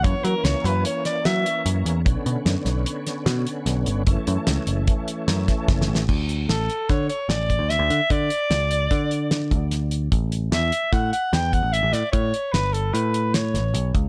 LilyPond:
<<
  \new Staff \with { instrumentName = "Soprano saxophone" } { \time 5/4 \key d \major \tempo 4 = 149 cis''8 ais'8 cis''8 b'8 cis''8 d''8 e''4 r4 | r1 r4 | r1 r4 | r4 a'4 cis''8 cis''8 d''4 e''4 |
d''1 r4 | r4 e''4 fis''8 fis''8 g''8 fis''8 e''8 d''8 | cis''4 b'8 a'8 b'4 cis''4. r8 | }
  \new Staff \with { instrumentName = "Tonewheel organ" } { \time 5/4 \key d \major <e ais cis'>1~ <e ais cis'>4 | <d b cis'>1~ <d b cis'>4 | <e a cis'>1~ <e a cis'>4 | r1 r4 |
r1 r4 | r1 r4 | r1 r4 | }
  \new Staff \with { instrumentName = "Picked electric bass" } { \clef bass \time 5/4 \key d \major fis,16 r16 fis16 r16 cis,16 r16 fis,8 r4 fis8 r8 fis,8 e,8 | b,,16 r16 b,16 r16 fis,16 r16 b,,8 r4 b,8 r8 b,,8 g,,8 | fis,,16 r16 fis,16 r16 cis,16 r16 fis,,8 r4 fis,8 r8 fis,,8 a,,8 | d,4 a,,8 r8 d8 r8 a,,8. d,8 d,16 d16 r16 |
d8 r8 cis,4 d4. d,4. | a,,4 e,8 r8 a,8 r8 e,8. a,,8 a,,16 a,16 r16 | a,8 r8 g,,4 a,4. a,,8 b,,8 cis,8 | }
  \new DrumStaff \with { instrumentName = "Drums" } \drummode { \time 5/4 <hh bd>8 hh8 <hh sn>8 hh8 hh8 <hh sn>8 <hh sn>8 hh8 hh8 hh8 | <hh bd>8 hh8 <hh sn>8 <hh sn>8 hh8 <hh sn>8 <hh sn>8 hh8 <hh sn>8 hh8 | <hh bd>8 hh8 <hh sn>8 hh8 <hh bd>8 hh8 <hh sn>8 <hh bd sn>8 \tuplet 3/2 { <bd sn>8 sn8 sn8 } | <cymc bd>8 hh8 <hh sn>8 hh8 <hh bd sn>8 hh8 <hh sn>8 <hh bd>8 <hh sn>8 hh8 |
<hh bd>8 hh8 <hh sn>8 hh8 <hh bd sn>8 hh8 <hh sn>8 <hh bd>8 <hh sn>8 hh8 | <hh bd>8 hh8 <hh sn>8 hh8 <hh bd sn>8 hh8 <hh sn>8 <hh bd>8 hh8 <hh sn>8 | <hh bd>8 hh8 <hh sn>8 hh8 hh8 hh8 <hh sn>8 <hh sn>8 hh8 <hh bd>8 | }
>>